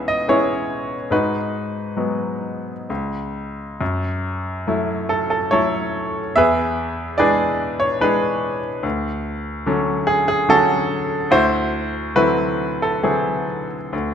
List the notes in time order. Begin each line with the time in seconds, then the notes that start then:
Already playing: C#2 E3 B3 C#4 G#4 B4 E5 F#5
0.08 D#5
0.28 E3 B3 C#4 E4 G#4 C#5
1.11 G#2 D#4 F#4 B4
1.97 F#3 G#3 B3
2.90 C#2
3.81 F#2
4.67 F#3 A3 E4
5.09 A4
5.30 A4
5.51 F#3 A3 E4 A4 C#5
6.36 E2 G#4 B4 E5
7.18 E3 G#3 D4 G#4 B4 D5
7.80 C#5
8.01 E3 G#3 D4 G#4 B4
8.83 D2
9.66 D3 F#3 C#4
10.07 G#4
10.28 G#4
10.48 D3 F#3 C#4 F#4 A4
11.31 D2 E4 F#4 C5
12.15 D3 E3 F#3 C4 E4 F#4 B4
12.82 A4
13.03 D3 E3 F#3 C4 E4 G#4
13.93 D2